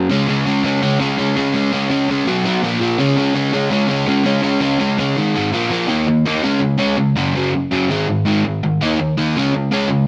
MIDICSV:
0, 0, Header, 1, 2, 480
1, 0, Start_track
1, 0, Tempo, 362538
1, 139, Time_signature, 4, 2, 24, 8
1, 13337, End_track
2, 0, Start_track
2, 0, Title_t, "Overdriven electric guitar"
2, 0, Program_c, 0, 29
2, 0, Note_on_c, 0, 42, 71
2, 127, Note_on_c, 0, 49, 95
2, 140, Note_off_c, 0, 42, 0
2, 143, Note_on_c, 0, 56, 109
2, 149, Note_on_c, 0, 61, 107
2, 353, Note_off_c, 0, 49, 0
2, 366, Note_off_c, 0, 56, 0
2, 368, Note_on_c, 0, 49, 85
2, 375, Note_off_c, 0, 61, 0
2, 382, Note_on_c, 0, 56, 85
2, 391, Note_on_c, 0, 61, 95
2, 594, Note_off_c, 0, 49, 0
2, 604, Note_off_c, 0, 56, 0
2, 610, Note_on_c, 0, 49, 82
2, 613, Note_off_c, 0, 61, 0
2, 620, Note_on_c, 0, 56, 100
2, 629, Note_on_c, 0, 61, 95
2, 825, Note_off_c, 0, 49, 0
2, 835, Note_off_c, 0, 56, 0
2, 841, Note_on_c, 0, 49, 81
2, 844, Note_off_c, 0, 61, 0
2, 851, Note_on_c, 0, 56, 94
2, 860, Note_on_c, 0, 61, 90
2, 1064, Note_off_c, 0, 49, 0
2, 1074, Note_off_c, 0, 56, 0
2, 1080, Note_on_c, 0, 49, 101
2, 1081, Note_off_c, 0, 61, 0
2, 1090, Note_on_c, 0, 56, 109
2, 1097, Note_on_c, 0, 61, 97
2, 1302, Note_off_c, 0, 49, 0
2, 1309, Note_off_c, 0, 56, 0
2, 1318, Note_on_c, 0, 49, 81
2, 1322, Note_off_c, 0, 61, 0
2, 1325, Note_on_c, 0, 56, 93
2, 1338, Note_on_c, 0, 61, 107
2, 1542, Note_off_c, 0, 49, 0
2, 1555, Note_off_c, 0, 56, 0
2, 1558, Note_on_c, 0, 49, 75
2, 1559, Note_off_c, 0, 61, 0
2, 1571, Note_on_c, 0, 56, 79
2, 1575, Note_on_c, 0, 61, 84
2, 1789, Note_off_c, 0, 49, 0
2, 1795, Note_off_c, 0, 56, 0
2, 1805, Note_on_c, 0, 49, 90
2, 1810, Note_off_c, 0, 61, 0
2, 1810, Note_on_c, 0, 56, 82
2, 1826, Note_on_c, 0, 61, 90
2, 2017, Note_off_c, 0, 49, 0
2, 2026, Note_off_c, 0, 56, 0
2, 2032, Note_on_c, 0, 49, 89
2, 2041, Note_off_c, 0, 61, 0
2, 2042, Note_on_c, 0, 56, 112
2, 2057, Note_on_c, 0, 61, 109
2, 2258, Note_off_c, 0, 49, 0
2, 2270, Note_off_c, 0, 56, 0
2, 2272, Note_off_c, 0, 61, 0
2, 2274, Note_on_c, 0, 49, 84
2, 2286, Note_on_c, 0, 56, 97
2, 2288, Note_on_c, 0, 61, 90
2, 2493, Note_off_c, 0, 49, 0
2, 2507, Note_off_c, 0, 56, 0
2, 2509, Note_on_c, 0, 49, 84
2, 2512, Note_off_c, 0, 61, 0
2, 2523, Note_on_c, 0, 56, 85
2, 2528, Note_on_c, 0, 61, 102
2, 2749, Note_off_c, 0, 49, 0
2, 2762, Note_off_c, 0, 56, 0
2, 2765, Note_on_c, 0, 49, 91
2, 2774, Note_off_c, 0, 61, 0
2, 2777, Note_on_c, 0, 56, 84
2, 2790, Note_on_c, 0, 61, 100
2, 2989, Note_off_c, 0, 49, 0
2, 2994, Note_on_c, 0, 47, 97
2, 3001, Note_off_c, 0, 56, 0
2, 3006, Note_on_c, 0, 54, 94
2, 3007, Note_off_c, 0, 61, 0
2, 3014, Note_on_c, 0, 59, 111
2, 3222, Note_off_c, 0, 47, 0
2, 3235, Note_off_c, 0, 54, 0
2, 3238, Note_on_c, 0, 47, 84
2, 3241, Note_off_c, 0, 59, 0
2, 3251, Note_on_c, 0, 54, 105
2, 3257, Note_on_c, 0, 59, 97
2, 3471, Note_off_c, 0, 47, 0
2, 3477, Note_off_c, 0, 54, 0
2, 3480, Note_off_c, 0, 59, 0
2, 3481, Note_on_c, 0, 46, 91
2, 3492, Note_on_c, 0, 53, 93
2, 3502, Note_on_c, 0, 58, 110
2, 3683, Note_off_c, 0, 46, 0
2, 3699, Note_on_c, 0, 46, 90
2, 3707, Note_off_c, 0, 58, 0
2, 3713, Note_off_c, 0, 53, 0
2, 3718, Note_on_c, 0, 53, 86
2, 3723, Note_on_c, 0, 58, 97
2, 3941, Note_off_c, 0, 46, 0
2, 3946, Note_on_c, 0, 49, 97
2, 3953, Note_off_c, 0, 58, 0
2, 3956, Note_off_c, 0, 53, 0
2, 3962, Note_on_c, 0, 56, 103
2, 3962, Note_on_c, 0, 61, 108
2, 4170, Note_off_c, 0, 49, 0
2, 4185, Note_off_c, 0, 61, 0
2, 4186, Note_on_c, 0, 49, 87
2, 4190, Note_off_c, 0, 56, 0
2, 4195, Note_on_c, 0, 56, 89
2, 4201, Note_on_c, 0, 61, 85
2, 4408, Note_off_c, 0, 49, 0
2, 4410, Note_off_c, 0, 56, 0
2, 4424, Note_on_c, 0, 49, 96
2, 4426, Note_on_c, 0, 56, 88
2, 4427, Note_off_c, 0, 61, 0
2, 4443, Note_on_c, 0, 61, 99
2, 4657, Note_off_c, 0, 49, 0
2, 4663, Note_off_c, 0, 56, 0
2, 4673, Note_on_c, 0, 49, 86
2, 4674, Note_off_c, 0, 61, 0
2, 4679, Note_on_c, 0, 56, 93
2, 4689, Note_on_c, 0, 61, 103
2, 4882, Note_off_c, 0, 49, 0
2, 4894, Note_off_c, 0, 56, 0
2, 4898, Note_on_c, 0, 49, 86
2, 4909, Note_off_c, 0, 61, 0
2, 4910, Note_on_c, 0, 56, 94
2, 4925, Note_on_c, 0, 61, 108
2, 5121, Note_off_c, 0, 49, 0
2, 5133, Note_off_c, 0, 56, 0
2, 5137, Note_on_c, 0, 49, 89
2, 5147, Note_off_c, 0, 61, 0
2, 5149, Note_on_c, 0, 56, 93
2, 5163, Note_on_c, 0, 61, 94
2, 5365, Note_off_c, 0, 49, 0
2, 5375, Note_off_c, 0, 56, 0
2, 5381, Note_on_c, 0, 49, 82
2, 5389, Note_off_c, 0, 61, 0
2, 5391, Note_on_c, 0, 56, 81
2, 5405, Note_on_c, 0, 61, 81
2, 5600, Note_off_c, 0, 49, 0
2, 5615, Note_off_c, 0, 56, 0
2, 5616, Note_on_c, 0, 49, 88
2, 5622, Note_off_c, 0, 61, 0
2, 5631, Note_on_c, 0, 56, 85
2, 5638, Note_on_c, 0, 61, 99
2, 5846, Note_off_c, 0, 49, 0
2, 5852, Note_off_c, 0, 56, 0
2, 5860, Note_off_c, 0, 61, 0
2, 5862, Note_on_c, 0, 49, 89
2, 5868, Note_on_c, 0, 56, 106
2, 5876, Note_on_c, 0, 61, 108
2, 6080, Note_off_c, 0, 49, 0
2, 6095, Note_off_c, 0, 56, 0
2, 6096, Note_on_c, 0, 49, 83
2, 6108, Note_off_c, 0, 61, 0
2, 6111, Note_on_c, 0, 56, 92
2, 6124, Note_on_c, 0, 61, 90
2, 6325, Note_off_c, 0, 49, 0
2, 6335, Note_off_c, 0, 56, 0
2, 6341, Note_on_c, 0, 49, 78
2, 6346, Note_off_c, 0, 61, 0
2, 6351, Note_on_c, 0, 56, 89
2, 6362, Note_on_c, 0, 61, 92
2, 6581, Note_off_c, 0, 49, 0
2, 6592, Note_off_c, 0, 56, 0
2, 6597, Note_on_c, 0, 49, 84
2, 6601, Note_off_c, 0, 61, 0
2, 6608, Note_on_c, 0, 56, 97
2, 6617, Note_on_c, 0, 61, 97
2, 6826, Note_off_c, 0, 49, 0
2, 6832, Note_off_c, 0, 56, 0
2, 6834, Note_on_c, 0, 44, 94
2, 6836, Note_off_c, 0, 61, 0
2, 6841, Note_on_c, 0, 51, 107
2, 6851, Note_on_c, 0, 56, 97
2, 7060, Note_off_c, 0, 44, 0
2, 7068, Note_off_c, 0, 51, 0
2, 7076, Note_on_c, 0, 44, 94
2, 7082, Note_off_c, 0, 56, 0
2, 7084, Note_on_c, 0, 51, 88
2, 7098, Note_on_c, 0, 56, 88
2, 7300, Note_off_c, 0, 51, 0
2, 7306, Note_off_c, 0, 44, 0
2, 7306, Note_on_c, 0, 46, 80
2, 7312, Note_off_c, 0, 56, 0
2, 7317, Note_on_c, 0, 53, 97
2, 7326, Note_on_c, 0, 58, 96
2, 7524, Note_off_c, 0, 46, 0
2, 7534, Note_off_c, 0, 53, 0
2, 7540, Note_on_c, 0, 46, 82
2, 7545, Note_off_c, 0, 58, 0
2, 7550, Note_on_c, 0, 53, 94
2, 7560, Note_on_c, 0, 58, 90
2, 7776, Note_off_c, 0, 46, 0
2, 7779, Note_off_c, 0, 58, 0
2, 7782, Note_on_c, 0, 51, 87
2, 7783, Note_off_c, 0, 53, 0
2, 7795, Note_on_c, 0, 58, 96
2, 7798, Note_on_c, 0, 63, 93
2, 8019, Note_off_c, 0, 51, 0
2, 8026, Note_off_c, 0, 58, 0
2, 8027, Note_off_c, 0, 63, 0
2, 8043, Note_on_c, 0, 51, 71
2, 8051, Note_on_c, 0, 58, 73
2, 8260, Note_off_c, 0, 51, 0
2, 8264, Note_off_c, 0, 58, 0
2, 8284, Note_on_c, 0, 51, 89
2, 8296, Note_on_c, 0, 58, 97
2, 8299, Note_on_c, 0, 63, 96
2, 8510, Note_off_c, 0, 51, 0
2, 8516, Note_off_c, 0, 58, 0
2, 8517, Note_on_c, 0, 49, 88
2, 8518, Note_off_c, 0, 63, 0
2, 8522, Note_on_c, 0, 56, 93
2, 8533, Note_on_c, 0, 61, 101
2, 8731, Note_off_c, 0, 49, 0
2, 8738, Note_off_c, 0, 56, 0
2, 8747, Note_on_c, 0, 49, 65
2, 8754, Note_on_c, 0, 56, 78
2, 8755, Note_off_c, 0, 61, 0
2, 8962, Note_off_c, 0, 49, 0
2, 8973, Note_off_c, 0, 56, 0
2, 8978, Note_on_c, 0, 49, 86
2, 8989, Note_on_c, 0, 56, 93
2, 8991, Note_on_c, 0, 61, 102
2, 9218, Note_off_c, 0, 49, 0
2, 9223, Note_off_c, 0, 56, 0
2, 9224, Note_off_c, 0, 61, 0
2, 9235, Note_on_c, 0, 49, 69
2, 9243, Note_on_c, 0, 56, 73
2, 9457, Note_off_c, 0, 49, 0
2, 9461, Note_off_c, 0, 56, 0
2, 9478, Note_on_c, 0, 42, 88
2, 9486, Note_on_c, 0, 49, 94
2, 9488, Note_on_c, 0, 54, 97
2, 9708, Note_off_c, 0, 42, 0
2, 9712, Note_off_c, 0, 49, 0
2, 9714, Note_off_c, 0, 54, 0
2, 9725, Note_on_c, 0, 42, 86
2, 9735, Note_on_c, 0, 49, 89
2, 9745, Note_on_c, 0, 54, 98
2, 9952, Note_off_c, 0, 42, 0
2, 9957, Note_off_c, 0, 49, 0
2, 9962, Note_off_c, 0, 54, 0
2, 9972, Note_on_c, 0, 42, 72
2, 9979, Note_on_c, 0, 49, 71
2, 10187, Note_off_c, 0, 42, 0
2, 10190, Note_off_c, 0, 49, 0
2, 10209, Note_on_c, 0, 42, 93
2, 10213, Note_on_c, 0, 49, 88
2, 10228, Note_on_c, 0, 54, 94
2, 10435, Note_off_c, 0, 42, 0
2, 10437, Note_off_c, 0, 49, 0
2, 10444, Note_off_c, 0, 54, 0
2, 10452, Note_on_c, 0, 44, 82
2, 10459, Note_on_c, 0, 51, 93
2, 10466, Note_on_c, 0, 56, 102
2, 10676, Note_off_c, 0, 44, 0
2, 10677, Note_off_c, 0, 51, 0
2, 10684, Note_off_c, 0, 56, 0
2, 10693, Note_on_c, 0, 51, 77
2, 10694, Note_on_c, 0, 44, 76
2, 10908, Note_off_c, 0, 44, 0
2, 10908, Note_off_c, 0, 51, 0
2, 10925, Note_on_c, 0, 44, 96
2, 10938, Note_on_c, 0, 51, 94
2, 10946, Note_on_c, 0, 56, 101
2, 11154, Note_off_c, 0, 44, 0
2, 11160, Note_off_c, 0, 51, 0
2, 11164, Note_off_c, 0, 56, 0
2, 11180, Note_on_c, 0, 44, 74
2, 11186, Note_on_c, 0, 51, 77
2, 11392, Note_off_c, 0, 44, 0
2, 11395, Note_off_c, 0, 51, 0
2, 11429, Note_on_c, 0, 44, 77
2, 11433, Note_on_c, 0, 51, 70
2, 11637, Note_off_c, 0, 44, 0
2, 11639, Note_off_c, 0, 51, 0
2, 11664, Note_on_c, 0, 51, 85
2, 11674, Note_on_c, 0, 58, 89
2, 11684, Note_on_c, 0, 63, 106
2, 11884, Note_off_c, 0, 51, 0
2, 11889, Note_off_c, 0, 58, 0
2, 11894, Note_off_c, 0, 63, 0
2, 11903, Note_on_c, 0, 51, 71
2, 11910, Note_on_c, 0, 58, 75
2, 12114, Note_off_c, 0, 51, 0
2, 12118, Note_off_c, 0, 58, 0
2, 12147, Note_on_c, 0, 51, 91
2, 12154, Note_on_c, 0, 58, 100
2, 12164, Note_on_c, 0, 63, 100
2, 12366, Note_off_c, 0, 51, 0
2, 12370, Note_off_c, 0, 58, 0
2, 12375, Note_off_c, 0, 63, 0
2, 12397, Note_on_c, 0, 49, 88
2, 12404, Note_on_c, 0, 56, 84
2, 12417, Note_on_c, 0, 61, 95
2, 12612, Note_off_c, 0, 49, 0
2, 12615, Note_off_c, 0, 56, 0
2, 12622, Note_off_c, 0, 61, 0
2, 12635, Note_on_c, 0, 49, 73
2, 12636, Note_on_c, 0, 56, 79
2, 12841, Note_off_c, 0, 49, 0
2, 12842, Note_off_c, 0, 56, 0
2, 12866, Note_on_c, 0, 49, 93
2, 12872, Note_on_c, 0, 56, 93
2, 12888, Note_on_c, 0, 61, 109
2, 13078, Note_off_c, 0, 49, 0
2, 13090, Note_off_c, 0, 56, 0
2, 13094, Note_on_c, 0, 49, 74
2, 13098, Note_off_c, 0, 61, 0
2, 13105, Note_on_c, 0, 56, 82
2, 13312, Note_off_c, 0, 49, 0
2, 13317, Note_off_c, 0, 56, 0
2, 13337, End_track
0, 0, End_of_file